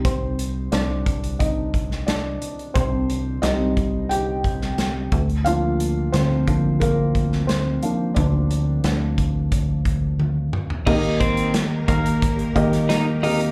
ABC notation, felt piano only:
X:1
M:4/4
L:1/8
Q:1/4=89
K:Eb
V:1 name="Felt piano"
[Cc]2 [Dd]2 [Ee]2 [Dd]2 | [Cc]2 e2 [Gg]3 z | [Ff]2 [Cc]2 [B,B]2 [Cc]2 | [Dd]6 z2 |
[B,Ge]4 z [B,Ge]2 [B,GB] |]
V:2 name="Felt piano"
[G,CE]6- [G,CE] z | z2 [G,CE]3 z3 | [F,B,D]3 [F,B,D] z3 [F,B,D] | z8 |
E,3 z4 z |]